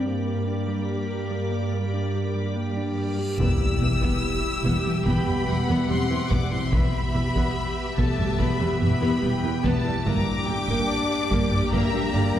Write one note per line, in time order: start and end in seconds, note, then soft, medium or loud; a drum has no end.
0.06 3.15 G2 soft
0.06 0.18 G3 medium
0.06 3.36 G3 medium
0.06 3.35 A#3 medium
0.06 2.98 A#3 medium
0.06 3.35 G4 medium
0.06 3.16 G4 soft
0.06 3.16 A#4 soft
0.06 3.36 D5 medium
0.06 reverse cymbal soft
0.48 0.60 D4 soft
0.68 0.80 G3 medium
1.31 1.43 G3 medium
1.52 1.64 A#3 soft
1.73 1.85 G3 medium
1.94 2.06 D4 soft
2.15 2.27 D4 soft
2.35 2.48 G3 medium
2.56 2.68 A#3 medium
2.77 2.89 D4 soft
2.98 3.10 G3 medium
3.19 3.31 G4 soft
3.38 3.47 E1 medium
3.38 3.47 E2 medium
3.38 3.52 E3 medium
3.38 6.69 G3 medium
3.38 3.59 B3 medium
3.38 5.02 E4 medium
3.38 6.69 G4 medium
3.38 6.69 E5 medium
3.38 5.02 E6 medium
3.38 taiko medium
3.38 sub drop medium
3.80 3.88 E1 soft
3.80 3.89 E2 soft
3.80 3.90 E3 soft
3.80 3.94 B3 medium
4.02 4.10 E2 medium
4.02 4.14 E3 medium
4.02 4.21 B3 medium
4.02 taiko medium
4.64 4.72 E1 medium
4.64 4.73 E2 medium
4.64 4.77 E3 medium
4.64 4.84 B3 medium
4.64 taiko medium
4.84 4.94 E2 soft
4.84 4.92 G3 soft
4.84 4.97 G3 medium
5.05 5.13 E1 medium
5.05 5.14 E2 medium
5.05 5.18 E3 medium
5.05 5.25 B3 medium
5.05 5.88 B3 medium
5.05 5.45 G5 medium
5.05 5.88 B5 medium
5.05 taiko medium
5.27 5.35 E2 soft
5.27 5.35 G3 soft
5.27 5.39 B3 medium
5.47 5.56 E1 soft
5.47 5.56 E2 soft
5.47 5.56 E3 soft
5.47 5.60 B3 medium
5.47 6.73 F#5 medium
5.68 5.77 E2 medium
5.68 5.81 E3 medium
5.68 5.88 B3 medium
5.89 5.97 E1 soft
5.89 5.98 E2 soft
5.89 5.97 G3 soft
5.89 6.02 G3 medium
5.89 6.30 C4 medium
5.89 6.30 C6 medium
6.09 6.18 E2 soft
6.09 6.17 E3 soft
6.09 6.23 B3 medium
6.29 6.39 E1 medium
6.29 6.39 E2 medium
6.29 6.44 E3 medium
6.29 6.50 B3 medium
6.29 6.52 D4 medium
6.29 6.51 D6 medium
6.29 taiko medium
6.51 6.60 E2 soft
6.51 6.59 G3 soft
6.51 6.73 C4 medium
6.51 6.65 E4 medium
6.51 6.72 C6 medium
6.71 6.81 E1 medium
6.71 6.81 E2 medium
6.71 6.85 E3 medium
6.71 10.03 G3 medium
6.71 6.91 B3 medium
6.71 7.95 B3 medium
6.71 10.02 B3 medium
6.71 10.01 G4 medium
6.71 10.02 G4 medium
6.71 9.18 E5 medium
6.71 10.02 E5 medium
6.71 7.97 B5 medium
6.71 taiko loud
7.13 7.23 E1 soft
7.13 7.23 E2 soft
7.13 7.21 E3 soft
7.13 7.27 B3 medium
7.35 7.44 E2 medium
7.35 7.47 E3 medium
7.35 7.54 B3 medium
7.35 taiko medium
7.97 8.06 E1 medium
7.97 8.06 E2 medium
7.97 8.10 E3 medium
7.97 8.38 A3 medium
7.97 8.17 B3 medium
7.97 8.38 A5 medium
7.97 taiko medium
8.18 8.26 E2 medium
8.18 8.31 G3 medium
8.18 8.26 G3 soft
8.18 taiko low-mid soft
8.38 8.47 E1 medium
8.38 8.48 E2 medium
8.38 8.51 E3 medium
8.38 8.58 B3 medium
8.38 8.80 B3 medium
8.38 8.81 B5 medium
8.38 taiko medium
8.60 8.68 E2 soft
8.60 8.68 G3 medium
8.60 8.72 B3 medium
8.80 8.90 E1 soft
8.80 8.89 E2 soft
8.80 8.88 E3 soft
8.80 8.93 B3 medium
8.80 9.63 B3 medium
8.80 9.63 B5 medium
8.80 taiko low-mid medium
9.01 9.09 E2 medium
9.01 9.14 E3 medium
9.01 9.21 B3 medium
9.22 9.32 E1 medium
9.22 9.31 E2 soft
9.22 9.30 G3 medium
9.22 9.35 G3 medium
9.22 9.64 G5 medium
9.43 9.52 E2 medium
9.43 9.52 E3 medium
9.43 9.56 B3 medium
9.63 9.73 E1 medium
9.63 9.72 E2 medium
9.63 9.76 E3 medium
9.63 9.84 B3 medium
9.63 10.07 A5 medium
9.63 taiko medium
9.84 9.93 E2 soft
9.84 9.94 G3 medium
9.84 9.97 E4 medium
10.05 10.15 G1 medium
10.05 10.14 G2 medium
10.05 12.39 G3 medium
10.05 10.18 G3 medium
10.05 12.39 A#3 medium
10.05 10.26 A#3 medium
10.05 11.69 D4 medium
10.05 12.39 G4 medium
10.05 12.39 G5 medium
10.05 10.48 A#5 medium
10.05 11.69 D6 medium
10.05 taiko loud
10.47 10.56 G1 soft
10.47 10.56 G2 medium
10.47 10.57 D3 soft
10.47 10.59 D4 medium
10.47 10.90 G5 medium
10.68 10.77 G2 medium
10.68 10.81 G3 medium
10.68 10.88 A#3 medium
10.68 taiko medium
10.90 11.73 D5 medium
11.31 11.39 G1 medium
11.31 11.39 G2 medium
11.31 11.43 G3 loud
11.31 11.51 A#3 medium
11.31 taiko medium
11.51 11.60 G2 medium
11.51 11.60 G3 medium
11.51 11.64 A#3 medium
11.51 taiko low-mid soft
11.72 11.81 G1 medium
11.72 11.81 G2 medium
11.72 11.85 G3 medium
11.72 11.92 A#3 medium
11.72 12.39 A#3 medium
11.72 12.15 E5 medium
11.72 12.39 A#5 medium
11.72 taiko medium
11.93 12.02 G2 medium
11.93 12.02 G3 medium
11.93 12.06 D4 medium
12.14 12.22 G1 soft
12.14 12.23 G2 medium
12.14 12.23 D3 medium
12.14 12.27 D4 medium
12.14 12.39 D5 medium
12.14 taiko low-mid medium
12.34 12.39 G2 medium
12.34 12.39 G3 medium
12.34 12.39 A#3 medium